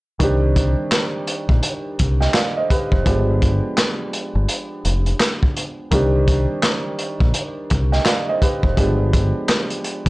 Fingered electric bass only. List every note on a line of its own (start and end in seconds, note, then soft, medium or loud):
0.20 0.74 C2 loud
1.49 1.60 A#1 medium
2.00 2.27 C2 medium
2.92 3.03 F1 medium
3.06 3.60 G1 loud
4.35 4.46 G1 medium
4.85 5.12 F1 medium
5.92 6.46 C2 loud
7.21 7.31 A#1 medium
7.71 7.98 C2 medium
8.63 8.74 F1 medium
8.77 9.32 G1 loud